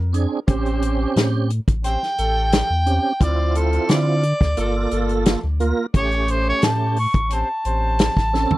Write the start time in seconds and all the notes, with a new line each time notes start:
Already playing: F2
0.13 C4 D4 G#4, closed hi-hat
0.47 A1 C4 C#4 G4 C5, kick, closed hi-hat
0.66 closed hi-hat
0.82 closed hi-hat
1.16 A2, snare, closed hi-hat
1.50 closed hi-hat
1.68 A1, kick, closed hi-hat
1.82 C4 C#4 G4 C5 G5, closed hi-hat
2.03 snare
2.17 A1 A3 C#4 G4 A4, closed hi-hat
2.52 snare, closed hi-hat
2.70 E2
2.86 C4 C#4 G4, closed hi-hat
3.20 D2 F3 C4 E4 F4 C5 D5, kick, closed hi-hat
3.55 A4, closed hi-hat
3.73 closed hi-hat
3.89 D3 D5, snare, closed hi-hat
4.23 closed hi-hat
4.41 D2, kick, snare
4.57 G1 A3 A#3 F4 A4, closed hi-hat
4.90 G1 A3 A#3 F4 A4, closed hi-hat
5.09 closed hi-hat
5.26 snare, closed hi-hat
5.44 D2
5.60 A#3 F4 A#4, closed hi-hat
5.94 A1 A3 C#4 G4 C#5, kick, closed hi-hat
6.12 closed hi-hat
6.28 C5, closed hi-hat
6.49 C#5
6.62 A2 A5, snare, closed hi-hat
6.96 C#6, open hi-hat
7.14 A1, kick, closed hi-hat
7.29 C4 C#4 G4 C5 A5, closed hi-hat
7.64 A1 C4 C#4 G4 C5, closed hi-hat
7.99 snare, closed hi-hat
8.17 A1, kick, snare
8.33 C4 C#4 A4, snare
8.51 floor tom